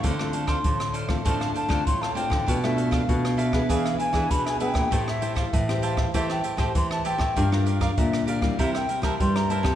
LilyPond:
<<
  \new Staff \with { instrumentName = "Flute" } { \time 4/4 \key a \minor \tempo 4 = 98 f''8 a''16 c'''8. r8 a''8 a''8 c'''16 a''16 g''8~ | g''16 e''8 f''8. e''8 f''8 gis''8 b''16 gis''16 g''8~ | g''16 e''8 f''16 e''8 f''8 e''16 g''8 a''16 c'''16 a''16 g''8~ | g''16 r8 f''16 e''8 f''8 e''16 g''8 a''16 c'''16 bes''16 a''8 | }
  \new Staff \with { instrumentName = "Cavaquinho" } { \time 4/4 \key a \minor <d' a' c'' f''>8 <d' a' c'' f''>16 <d' a' c'' f''>16 r8 <d' a' c'' f''>16 <a' c'' f''>16 <d' a' c'' f''>16 <a' c'' f''>16 <d' a' c'' f''>16 <d' a' c'' f''>16 r16 <a' c'' f''>16 <d' a' c'' f''>16 <a' c'' f''>16 | <d' a' b' f''>8 <d' a' b' f''>16 <d' a' b' f''>16 r8 <d' a' b' f''>16 <a' b' f''>16 <d' gis' b' e''>16 <gis' b' e''>16 <d' gis' b' e''>16 <d' gis' b' e''>16 r16 <gis' b' e''>16 <d' gis' b' e''>16 <gis' b' e''>16 | <g' c'' e'' a''>8 <g' c'' e'' a''>16 <g' c'' e'' a''>16 r8 <g' c'' e'' a''>16 <c'' e'' a''>16 <g' c'' e'' a''>16 <c'' e'' a''>16 <g' c'' e'' a''>16 <g' c'' e'' a''>16 r16 <c'' e'' a''>16 <g' c'' e'' a''>16 <c'' e'' a''>16 | <g' bes' d'' f''>8 <g' bes' d'' f''>16 <g' bes' d'' f''>16 r8 <g' bes' d'' f''>16 <bes' d'' f''>16 <e' bes' c'' e''>16 <bes' c'' e''>16 <e' bes' c'' e''>16 <e' bes' c'' e''>16 r16 <bes' c'' e''>16 <e' bes' c'' e''>16 <bes' c'' e''>16 | }
  \new Staff \with { instrumentName = "Nylon-string guitar" } { \time 4/4 \key a \minor << { <a c' f'>16 <a c' f'>8. <a c' f'>8. <a c' f'>16 <a c' f'>8 r16 <a c' f'>8. <a c' f'>8 | <a d' f'>16 <a d' f'>8. <a d' f'>8. <b d' aes'>4 <b d' gis'>8. <b d' gis'>8 | <e' g' c''>16 r16 <e' g' c''>8 r16 <e' g' c''>8. <e' g' c''>8. <e' g' c''>8. <e' g' c''>16 r16 | <d' f' bes'>16 <d' f' bes'>8. <d' f' bes'>8 r16 <g bes e'>4 <g bes e'>8. <g bes e'>8 | } \\ { d4 a,4 d4 a,4 | b,4 b,4 e4 b,4 | a4 e4 a4 e4 | g4 d4 c4 g,4 | } >> }
  \new Staff \with { instrumentName = "Nylon-string guitar" } { \clef bass \time 4/4 \key a \minor d4 d4 a,8 r16 d16 a,8. d16 | b,4 b,4 e8 r16 e16 b,8. bes,16 | a,4 a,4 e8 r16 a,16 e8. a,16 | g,4 bes,4 c8 r16 c16 g8. c16 | }
  \new DrumStaff \with { instrumentName = "Drums" } \drummode { \time 4/4 <hh bd>16 ss16 hh16 <hh bd ss>16 <hh bd>16 <hh ss>16 hh16 <bd ss>16 <hh bd>16 <hh ss>16 hh16 <hh bd ss>16 <hh bd>16 ss16 hh16 <bd ss>16 | <hh bd>16 ss16 hh16 <hh bd ss>16 <hh bd>16 <hh ss>16 hh16 <bd ss>16 <hh bd>16 <hh ss>16 hh16 <hh bd ss>16 <hh bd>16 <hh ss>16 hh16 <hh bd ss>16 | <hh bd>16 ss16 hh16 <hh bd ss>16 <hh bd>16 <hh ss>16 hh16 <bd ss>16 <hh bd>16 <hh ss>16 hh16 <hh bd ss>16 <hh bd>16 ss16 hh16 <bd ss>16 | <hh bd>16 ss16 hh16 <hh bd ss>16 <hh bd>16 <hh ss>16 hh16 <bd ss>16 <hh bd>16 <hh ss>16 hh16 <hh bd ss>16 <hh bd>16 <hh ss>16 hh16 <hh bd ss>16 | }
>>